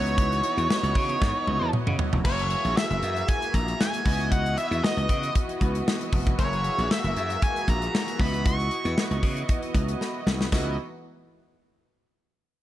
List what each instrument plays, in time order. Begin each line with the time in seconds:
Already playing: slap bass C#2, string section E3 B3 F#4 D#5, analog polysynth B3 D#4 E4 F#4 C#5, lead electric guitar C#5
0.06 closed hi-hat
0.18 kick, closed hi-hat
0.32 closed hi-hat
0.44 closed hi-hat
0.57 slap bass E2, closed hi-hat
0.70 snare
0.83 slap bass C#2, closed hi-hat
0.95 slap bass C#3, kick, open hi-hat
1.09 closed hi-hat
1.22 slap bass G#2, kick, snare
1.47 slap bass C#2, high tom
1.61 slap bass E2
1.73 mid tom
1.87 slap bass C#3, mid tom
1.99 floor tom
2.13 slap bass F1, floor tom
2.24 slap bass F#1, string section E3 G#3 A#3 F#4, analog polysynth A#3 F#4 G#4 E5, lead electric guitar C#5, kick, crash
2.39 closed hi-hat
2.50 closed hi-hat
2.65 slap bass A#1, closed hi-hat
2.77 lead electric guitar E5, snare
2.90 slap bass F#1, closed hi-hat
3.02 slap bass F#2, closed hi-hat
3.16 closed hi-hat
3.28 lead electric guitar G#5, kick, closed hi-hat
3.42 closed hi-hat
3.54 slap bass A#1, lead electric guitar A#5, kick, closed hi-hat
3.68 closed hi-hat
3.81 lead electric guitar G#5, snare
3.94 closed hi-hat
4.05 slap bass C#2, string section E3 B3 D#5, analog polysynth B3 E4 F#4 D#5, kick, open hi-hat
4.20 closed hi-hat
4.32 lead electric guitar F#5, kick, closed hi-hat
4.46 closed hi-hat
4.57 lead electric guitar E5, closed hi-hat
4.71 slap bass E2, closed hi-hat
4.84 lead electric guitar D#5, snare
4.97 slap bass C#2, closed hi-hat
5.09 slap bass C#3, kick, closed hi-hat
5.23 closed hi-hat
5.35 kick, closed hi-hat
5.49 closed hi-hat
5.61 slap bass C#2, kick, closed hi-hat
5.75 closed hi-hat
5.88 snare
6.01 closed hi-hat
6.13 slap bass F1, kick, open hi-hat
6.27 kick, closed hi-hat
6.38 slap bass F#1, string section G#3 A#3, analog polysynth A#3 F#4 G#4 E5, lead electric guitar C#5, kick, closed hi-hat
6.53 closed hi-hat
6.64 closed hi-hat
6.78 slap bass A#1, closed hi-hat
6.91 lead electric guitar E5, snare
7.04 slap bass F#1, closed hi-hat
7.16 slap bass F#2, closed hi-hat
7.30 closed hi-hat
7.42 lead electric guitar G#5, kick, closed hi-hat
7.56 closed hi-hat
7.68 slap bass A#1, lead electric guitar A#5, kick, closed hi-hat
7.82 closed hi-hat
7.95 snare
8.08 closed hi-hat
8.18 slap bass C#2, analog polysynth B3 E4 F#4 D#5, string section B3 D#5, lead electric guitar B5, kick, open hi-hat
8.34 closed hi-hat
8.46 lead electric guitar C#6, kick, closed hi-hat
8.60 closed hi-hat
8.71 closed hi-hat
8.85 slap bass E2, closed hi-hat
8.98 snare
9.11 slap bass C#2, closed hi-hat
9.23 slap bass C#3, kick, open hi-hat
9.37 closed hi-hat
9.49 kick, closed hi-hat
9.63 closed hi-hat
9.74 slap bass C#2, kick, closed hi-hat
9.88 closed hi-hat
10.01 snare
10.26 slap bass C2, snare
10.41 snare
10.52 slap bass C#2, string section E3 B3 D#4 F#4, analog polysynth B3 E4 F#4 D#5, kick, snare, splash